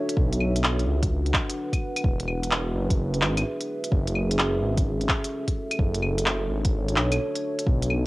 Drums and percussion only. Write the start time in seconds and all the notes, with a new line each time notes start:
0.09 closed hi-hat
0.17 kick
0.33 closed hi-hat
0.40 claves
0.56 closed hi-hat
0.64 clap
0.79 closed hi-hat
1.03 kick, closed hi-hat
1.26 closed hi-hat
1.34 kick, clap
1.50 closed hi-hat
1.73 kick, closed hi-hat, claves
1.96 closed hi-hat, claves
2.04 kick
2.20 closed hi-hat
2.28 claves
2.43 closed hi-hat
2.51 clap
2.90 kick, closed hi-hat
3.14 closed hi-hat
3.22 clap
3.37 closed hi-hat, claves
3.61 closed hi-hat
3.84 closed hi-hat
3.92 kick
4.07 closed hi-hat
4.15 claves
4.31 closed hi-hat
4.39 clap
4.77 kick, closed hi-hat
5.01 closed hi-hat
5.09 kick, clap
5.24 closed hi-hat
5.48 kick, closed hi-hat
5.71 closed hi-hat, claves
5.79 kick
5.95 closed hi-hat
6.02 claves
6.18 closed hi-hat
6.26 clap
6.65 kick, closed hi-hat
6.88 closed hi-hat
6.96 clap
7.12 closed hi-hat, claves
7.36 closed hi-hat
7.59 closed hi-hat
7.67 kick
7.82 closed hi-hat
7.90 claves